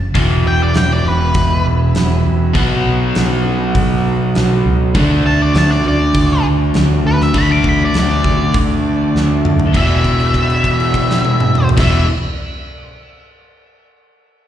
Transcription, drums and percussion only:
0.15 kick loud
0.15 open hi-hat soft
0.75 snare loud
0.75 open hi-hat soft
1.34 kick loud
1.34 open hi-hat soft
1.95 snare loud
1.95 open hi-hat soft
2.55 kick loud
2.55 open hi-hat soft
3.15 snare loud
3.15 open hi-hat soft
3.75 kick loud
3.75 open hi-hat medium
4.35 snare loud
4.35 open hi-hat soft
4.95 kick loud
4.95 open hi-hat soft
5.55 snare loud
5.55 open hi-hat soft
6.15 kick loud
6.15 open hi-hat medium
6.74 snare medium
6.74 open hi-hat soft
7.21 snare soft
7.34 kick medium
7.34 open hi-hat soft
7.64 kick medium
7.94 snare loud
7.94 open hi-hat soft
8.24 kick medium
8.54 kick loud
8.54 open hi-hat medium
9.16 snare medium
9.45 mid tom medium
9.59 floor tom medium
9.74 kick medium
9.74 crash medium
10.04 kick medium
10.04 crash soft
10.20 crash soft
10.34 kick medium
10.34 crash soft
10.50 crash soft
10.64 kick medium
10.64 crash soft
10.80 crash soft
10.94 kick medium
10.94 crash medium
11.11 snare medium
11.25 high tom medium
11.40 mid tom medium
11.55 mid tom medium
11.69 floor tom loud
11.78 kick loud
11.78 snare medium
11.78 crash loud

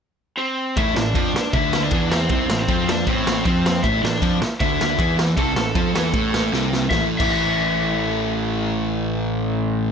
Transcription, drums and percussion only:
0.77 kick loud
0.77 ride medium
0.96 snare loud
1.15 kick loud
1.15 ride medium
1.36 snare loud
1.53 kick loud
1.53 ride medium
1.73 snare loud
1.91 kick loud
1.91 ride medium
2.12 snare loud
2.29 kick loud
2.29 ride medium
2.50 snare loud
2.68 kick loud
2.68 ride medium
2.89 snare loud
3.07 kick loud
3.07 ride medium
3.27 snare loud
3.45 kick loud
3.45 ride medium
3.66 snare loud
3.84 kick loud
3.84 ride medium
4.05 snare loud
4.22 kick loud
4.22 ride medium
4.42 snare loud
4.60 kick loud
4.60 ride medium
4.81 snare loud
4.99 kick loud
4.99 ride medium
5.19 snare loud
5.37 kick loud
5.37 ride medium
5.56 snare loud
5.75 kick loud
5.75 ride medium
5.96 snare loud
6.14 kick loud
6.14 ride medium
6.34 snare loud
6.53 snare medium
6.73 snare medium
6.91 kick loud
6.91 snare medium
7.20 kick loud
7.20 crash loud

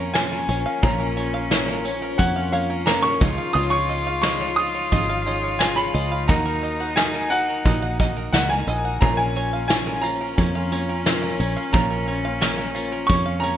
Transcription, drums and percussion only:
0.15 snare loud
0.15 tambourine medium
0.49 tambourine medium
0.83 kick loud
1.17 tambourine soft
1.51 snare loud
1.51 tambourine medium
1.85 tambourine medium
2.19 kick medium
2.19 tambourine medium
2.53 tambourine medium
2.87 snare loud
2.87 tambourine medium
3.21 kick loud
3.21 tambourine medium
3.89 tambourine soft
4.23 snare loud
4.23 tambourine medium
4.92 kick medium
4.92 tambourine medium
5.27 tambourine medium
5.60 snare loud
5.60 tambourine medium
5.95 tambourine medium
6.29 kick loud
6.29 tambourine soft
6.64 tambourine soft
6.97 snare loud
6.97 tambourine medium
7.32 tambourine medium
7.66 kick medium
7.66 tambourine medium
8.00 kick medium
8.00 tambourine medium
8.34 snare loud
8.34 tambourine medium
8.68 tambourine medium
9.02 kick loud
9.35 tambourine soft
9.69 snare loud
9.69 tambourine medium
10.04 tambourine medium
10.38 kick medium
10.38 tambourine medium
10.72 tambourine medium
11.06 snare loud
11.06 tambourine loud
11.40 tambourine medium
11.74 kick loud
12.08 tambourine soft
12.42 snare loud
12.42 tambourine loud
12.76 tambourine medium
13.09 kick medium
13.09 tambourine medium
13.44 tambourine medium

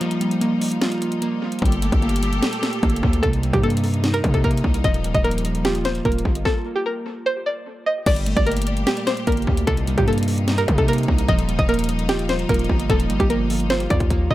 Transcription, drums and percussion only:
0.01 closed hi-hat medium
0.11 closed hi-hat medium
0.21 closed hi-hat medium
0.31 closed hi-hat medium
0.41 closed hi-hat medium
0.61 open hi-hat medium
0.72 closed hi-hat medium
0.81 snare loud
0.81 closed hi-hat medium
0.92 closed hi-hat medium
1.02 closed hi-hat medium
1.12 closed hi-hat medium
1.22 closed hi-hat medium
1.52 closed hi-hat soft
1.59 kick loud
1.59 closed hi-hat medium
1.66 closed hi-hat medium
1.72 closed hi-hat medium
1.82 closed hi-hat medium
1.92 kick loud
1.92 closed hi-hat medium
2.02 closed hi-hat soft
2.09 closed hi-hat medium
2.16 closed hi-hat medium
2.23 closed hi-hat medium
2.33 closed hi-hat medium
2.43 snare loud
2.43 closed hi-hat medium
2.53 closed hi-hat medium
2.63 snare loud
2.63 closed hi-hat medium
2.73 closed hi-hat medium
2.83 kick loud
2.83 closed hi-hat soft
2.90 closed hi-hat medium
2.96 closed hi-hat medium
3.03 kick loud
3.13 closed hi-hat medium
3.23 kick loud
3.23 closed hi-hat medium
3.33 closed hi-hat medium
3.43 closed hi-hat medium
3.53 kick loud
3.53 closed hi-hat medium
3.63 closed hi-hat medium
3.70 closed hi-hat medium
3.77 closed hi-hat medium
3.84 open hi-hat medium
3.94 closed hi-hat medium
4.04 snare loud
4.04 closed hi-hat medium
4.14 closed hi-hat medium
4.24 kick medium
4.24 closed hi-hat medium
4.34 kick loud
4.34 closed hi-hat medium
4.44 kick loud
4.44 closed hi-hat soft
4.51 closed hi-hat medium
4.57 closed hi-hat medium
4.64 kick loud
4.74 closed hi-hat medium
4.84 kick loud
4.84 closed hi-hat medium
4.94 closed hi-hat medium
5.04 closed hi-hat medium
5.15 kick loud
5.15 closed hi-hat medium
5.25 closed hi-hat medium
5.31 closed hi-hat medium
5.38 closed hi-hat medium
5.45 closed hi-hat medium
5.55 closed hi-hat medium
5.65 snare loud
5.65 closed hi-hat medium
5.75 closed hi-hat medium
5.85 snare loud
5.85 closed hi-hat medium
5.95 closed hi-hat soft
6.05 kick loud
6.05 closed hi-hat soft
6.12 closed hi-hat medium
6.18 closed hi-hat medium
6.25 kick medium
6.35 closed hi-hat medium
6.45 kick loud
6.45 snare medium
8.06 kick loud
8.06 closed hi-hat medium
8.06 crash loud
8.16 closed hi-hat medium
8.26 closed hi-hat medium
8.37 kick loud
8.37 closed hi-hat medium
8.47 closed hi-hat medium
8.52 closed hi-hat medium
8.57 closed hi-hat medium
8.62 closed hi-hat medium
8.67 closed hi-hat medium
8.77 closed hi-hat medium
8.87 snare loud
8.87 closed hi-hat medium
8.97 closed hi-hat medium
9.07 snare loud
9.07 closed hi-hat medium
9.17 closed hi-hat medium
9.27 kick loud
9.27 closed hi-hat medium
9.32 closed hi-hat medium
9.37 closed hi-hat medium
9.42 closed hi-hat soft
9.47 kick loud
9.57 closed hi-hat medium
9.67 kick loud
9.67 closed hi-hat medium
9.77 closed hi-hat medium
9.87 closed hi-hat medium
9.98 kick loud
9.98 closed hi-hat medium
10.08 closed hi-hat soft
10.13 closed hi-hat medium
10.18 closed hi-hat medium
10.23 closed hi-hat medium
10.28 open hi-hat medium
10.38 closed hi-hat medium
10.48 snare loud
10.48 closed hi-hat medium
10.58 closed hi-hat medium
10.68 kick medium
10.68 closed hi-hat medium
10.78 kick loud
10.78 closed hi-hat medium
10.88 closed hi-hat medium
10.93 closed hi-hat medium
10.98 closed hi-hat medium
11.03 closed hi-hat soft
11.08 kick loud
11.18 closed hi-hat medium
11.28 kick loud
11.28 closed hi-hat medium
11.39 closed hi-hat medium
11.49 closed hi-hat medium
11.59 kick loud
11.59 closed hi-hat medium
11.69 closed hi-hat medium
11.74 closed hi-hat medium
11.79 closed hi-hat medium
11.84 closed hi-hat medium
11.89 closed hi-hat medium
11.99 closed hi-hat medium
12.09 snare loud
12.09 closed hi-hat medium
12.19 closed hi-hat medium
12.29 snare loud
12.29 closed hi-hat medium
12.39 closed hi-hat medium
12.49 kick loud
12.49 closed hi-hat medium
12.54 closed hi-hat medium
12.59 closed hi-hat medium
12.64 closed hi-hat soft
12.69 kick loud
12.80 closed hi-hat medium
12.90 kick loud
12.90 closed hi-hat medium
13.00 closed hi-hat medium
13.10 closed hi-hat medium
13.20 kick loud
13.20 closed hi-hat medium
13.30 closed hi-hat medium
13.50 open hi-hat medium
13.60 closed hi-hat medium
13.70 snare loud
13.70 closed hi-hat medium
13.80 closed hi-hat medium
13.90 kick medium
13.90 closed hi-hat medium
14.00 kick loud
14.00 closed hi-hat medium
14.10 kick loud
14.10 closed hi-hat medium
14.31 kick loud

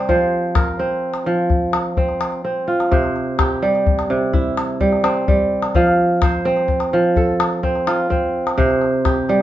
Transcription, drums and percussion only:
0.09 calabash thump medium
0.55 calabash thump medium
0.55 calabash click medium
1.14 calabash click soft
1.50 calabash thump medium
1.73 calabash click medium
1.97 calabash thump medium
2.09 calabash click soft
2.21 calabash click medium
2.32 calabash click soft
2.80 calabash click soft
2.92 calabash thump medium
2.92 calabash click soft
3.03 calabash click soft
3.16 calabash click soft
3.39 calabash thump medium
3.39 calabash click medium
3.63 calabash click soft
3.75 calabash click soft
3.86 calabash thump medium
3.99 calabash click soft
4.33 calabash thump medium
4.57 calabash click medium
4.80 calabash thump medium
4.92 calabash click soft
5.04 calabash click medium
5.28 calabash thump medium
5.63 calabash click medium
5.75 calabash thump medium
5.75 calabash click soft
5.87 calabash click soft
6.22 calabash thump medium
6.22 calabash click medium
6.46 calabash click soft
6.57 calabash click soft
6.68 calabash thump medium
6.80 calabash click medium
7.16 calabash thump medium
7.40 calabash click medium
7.63 calabash thump medium
7.75 calabash click soft
7.87 calabash click medium
8.11 calabash thump medium
8.47 calabash click soft
8.58 calabash thump medium
8.58 calabash click soft
8.70 calabash click soft
8.82 calabash click soft
9.05 calabash thump medium
9.05 calabash click medium
9.29 calabash click soft

